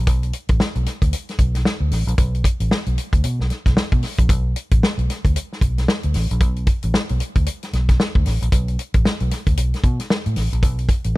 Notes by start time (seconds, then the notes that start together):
0.07 B1, kick, closed hi-hat
0.23 closed hi-hat
0.33 closed hi-hat
0.49 A1, kick, closed hi-hat
0.60 snare
0.75 B1, closed hi-hat
0.86 snare, closed hi-hat
1.02 D2, kick, closed hi-hat
1.13 closed hi-hat
1.29 snare, closed hi-hat
1.39 B1, kick, closed hi-hat
1.55 snare, closed hi-hat
1.65 snare
1.80 D2
1.91 A1, snare, open hi-hat
2.07 A#1, closed hi-hat
2.18 B1, kick, closed hi-hat
2.35 closed hi-hat
2.44 kick, closed hi-hat
2.60 A1, closed hi-hat
2.71 snare
2.86 B1, closed hi-hat
2.98 closed hi-hat
3.13 D2, kick, closed hi-hat
3.24 B2, closed hi-hat
3.39 B1, snare
3.50 snare, closed hi-hat
3.66 B1, kick, snare, closed hi-hat
3.77 snare
3.92 B2, kick, closed hi-hat
4.03 snare, open hi-hat
4.19 A#1, kick, closed hi-hat
4.29 B1, kick, closed hi-hat
4.56 closed hi-hat
4.71 A1, kick, closed hi-hat
4.83 snare
4.98 B1, closed hi-hat
5.10 snare, closed hi-hat
5.25 D2, kick, closed hi-hat
5.36 closed hi-hat
5.53 snare
5.61 B1, kick, closed hi-hat
5.78 snare, closed hi-hat
5.88 snare
6.03 D2, closed hi-hat
6.14 A1, snare, open hi-hat
6.31 A#1, closed hi-hat
6.40 B1, kick, closed hi-hat
6.56 closed hi-hat
6.67 kick, closed hi-hat
6.82 A1, closed hi-hat
6.94 snare
7.09 B1, closed hi-hat
7.20 closed hi-hat
7.35 D2, kick, closed hi-hat
7.46 closed hi-hat
7.63 snare, closed hi-hat
7.73 B1, snare, closed hi-hat
7.89 kick, snare, closed hi-hat
8.00 snare
8.15 D2, kick
8.26 A1, snare, open hi-hat
8.42 A#1, closed hi-hat
8.52 B1, kick, closed hi-hat
8.68 closed hi-hat
8.79 closed hi-hat
8.94 A1, kick, closed hi-hat
9.05 snare
9.20 B1, closed hi-hat
9.31 snare, closed hi-hat
9.47 D2, kick, closed hi-hat
9.57 B1, closed hi-hat
9.74 snare, closed hi-hat
9.84 B2, kick, closed hi-hat
9.99 snare, closed hi-hat
10.10 snare
10.26 A2, closed hi-hat
10.36 A1, snare, open hi-hat
10.52 A#1, closed hi-hat
10.63 B1, kick, closed hi-hat
10.79 closed hi-hat
10.89 kick, closed hi-hat
11.04 A1, closed hi-hat